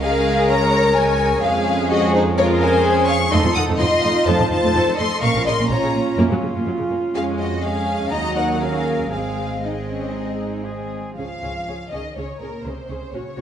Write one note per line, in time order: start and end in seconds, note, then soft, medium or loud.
0.00 1.38 C#2 medium
0.00 0.93 G#3 loud
0.00 0.94 C#4 loud
0.00 0.48 G#4 loud
0.00 1.39 A#4 loud
0.00 0.48 F5 loud
0.49 0.95 C#5 loud
0.49 0.95 A#5 loud
0.95 1.41 G#3 medium
0.95 1.41 C#4 medium
0.95 1.42 C#5 loud
0.95 1.42 G#5 loud
1.42 3.30 F2 loud
1.42 2.36 G#3 medium
1.42 2.36 C#4 loud
1.42 1.89 G#4 loud
1.42 1.91 G#4 loud
1.42 1.90 F5 loud
1.90 2.15 F#4 loud
1.90 2.37 G#4 loud
1.90 2.14 D#5 loud
2.14 2.24 D#4 loud
2.14 2.22 C5 loud
2.38 3.30 G#3 loud
2.38 3.29 C#4 loud
2.38 2.61 F4 loud
2.38 2.84 A#4 loud
2.38 2.46 C#5 loud
2.61 3.08 C5 loud
2.61 3.07 G#5 loud
2.85 3.31 G#4 loud
3.08 3.17 F5 loud
3.08 3.31 C#6 loud
3.31 3.36 F2 loud
3.31 3.36 A3 loud
3.31 5.19 D#4 medium
3.31 3.79 A4 loud
3.31 3.40 D#5 loud
3.31 3.54 C6 loud
3.43 3.48 F2 medium
3.43 3.48 F3 medium
3.55 3.60 F2 medium
3.55 3.60 D#3 medium
3.55 3.63 F#5 loud
3.55 3.63 D#6 loud
3.67 3.72 F2 loud
3.67 3.73 A3 loud
3.78 3.84 F2 medium
3.78 3.84 F3 medium
3.78 4.73 F4 loud
3.78 4.25 D#5 loud
3.78 4.26 C6 loud
3.91 3.96 F2 medium
3.91 3.96 D#3 medium
4.03 4.07 F2 loud
4.03 4.08 A3 loud
4.27 4.31 F2 loud
4.27 4.32 A3 loud
4.27 4.48 C5 loud
4.27 4.51 A5 loud
4.39 4.43 F2 medium
4.39 4.44 F3 medium
4.50 4.55 F2 medium
4.50 4.56 D#3 medium
4.50 4.97 C5 loud
4.50 4.98 A5 loud
4.62 4.67 F2 loud
4.62 4.68 A3 loud
4.75 4.80 F2 medium
4.75 4.79 F3 medium
4.75 5.23 A4 loud
4.87 4.92 F2 medium
4.87 4.92 D#3 medium
4.97 5.03 F2 loud
4.97 5.04 A3 medium
4.97 5.22 D#5 loud
4.97 5.22 C6 loud
5.22 5.27 A#1 loud
5.22 5.28 A#3 medium
5.22 7.11 C#4 medium
5.22 5.70 A#4 medium
5.22 5.46 F5 loud
5.22 5.46 C#6 loud
5.35 5.39 A#1 medium
5.35 5.40 F3 medium
5.46 5.51 A#1 medium
5.46 5.51 C#3 medium
5.46 5.54 D#5 loud
5.46 5.69 C6 loud
5.58 5.63 A#1 loud
5.58 5.64 A#3 loud
5.70 5.75 A#1 medium
5.70 5.76 F3 medium
5.70 7.59 F4 loud
5.70 6.17 C#5 loud
5.70 6.17 A#5 loud
5.82 5.87 A#1 medium
5.82 5.87 C#3 medium
5.94 5.99 A#1 medium
5.94 5.99 A#3 loud
6.18 6.22 F#2 loud
6.18 6.23 A#3 loud
6.29 6.34 F#2 medium
6.29 6.36 F#3 medium
6.42 6.47 F#2 medium
6.42 6.48 C#3 medium
6.54 6.59 F#2 medium
6.54 6.60 A#3 medium
6.66 6.71 F#2 medium
6.66 6.72 F#3 medium
6.78 6.83 F#2 medium
6.78 6.83 C#3 medium
6.90 6.95 F#2 medium
6.90 6.95 A#3 medium
7.14 8.07 F2 medium
7.14 7.60 G#3 medium
7.14 7.59 C#4 medium
7.14 7.22 G#4 medium
7.14 7.23 F5 loud
7.38 7.63 F#4 medium
7.38 7.62 D#5 loud
7.63 8.11 G#3 medium
7.63 8.11 C#4 medium
7.63 8.11 G#4 medium
7.63 8.12 G#4 medium
7.63 8.12 F5 loud
8.11 9.12 D#2 medium
8.11 9.12 F#3 medium
8.11 8.61 D#4 medium
8.11 8.60 F#4 medium
8.11 8.35 D#5 medium
8.11 8.36 A#5 loud
8.36 8.61 A#4 medium
8.36 8.60 F#5 medium
8.61 9.12 C#4 medium
8.61 9.11 G#4 medium
8.61 9.12 A#4 medium
8.61 9.10 F5 loud
9.11 10.94 G#1 medium
9.11 9.63 G#3 medium
9.11 9.63 C4 medium
9.11 9.59 G#4 medium
9.11 9.63 G#4 medium
9.11 9.62 F5 medium
9.64 10.95 G#3 medium
9.64 10.95 C4 medium
9.64 9.72 D#4 medium
9.64 10.91 G#4 medium
9.64 10.93 D#5 medium
9.90 10.16 C#4 medium
10.16 10.66 D#4 medium
10.67 11.18 G#4 medium
11.17 11.25 C#2 soft
11.17 11.88 F3 medium
11.17 11.26 C#4 soft
11.17 11.26 G#4 soft
11.17 11.26 C#5 soft
11.17 11.88 F5 medium
11.43 11.51 C#2 soft
11.43 11.51 C#4 soft
11.43 11.51 G#4 soft
11.43 11.51 C#5 soft
11.68 11.76 C#2 soft
11.68 11.76 C#4 soft
11.68 11.76 G#4 soft
11.68 11.77 C#5 soft
11.92 12.00 C#2 soft
11.92 12.16 D#3 medium
11.92 12.01 C#4 soft
11.92 12.01 G#4 soft
11.92 12.00 C#5 soft
11.92 12.16 D#5 medium
12.16 12.25 C#2 soft
12.16 12.40 C#3 medium
12.16 12.25 C#4 medium
12.16 12.25 G#4 soft
12.16 12.40 C#5 medium
12.16 12.25 C#5 medium
12.40 12.49 C#2 soft
12.40 12.65 A#2 medium
12.40 12.50 C#4 soft
12.40 12.50 G#4 soft
12.40 12.65 A#4 medium
12.40 12.48 C#5 soft
12.65 12.73 C#2 medium
12.65 13.13 C3 medium
12.65 12.74 C#4 soft
12.65 12.74 G#4 soft
12.65 13.13 C5 medium
12.65 12.73 C#5 soft
12.89 12.97 C#2 medium
12.89 12.98 C#4 soft
12.89 12.98 G#4 soft
12.89 12.97 C#5 soft
13.12 13.21 A#1 medium
13.12 13.41 C#3 medium
13.12 13.22 C#4 soft
13.12 13.22 F#4 soft
13.12 13.20 C#5 soft
13.12 13.41 C#5 medium
13.36 13.41 A#1 medium
13.36 13.41 C#4 medium
13.36 13.41 F#4 soft
13.36 13.41 C#5 soft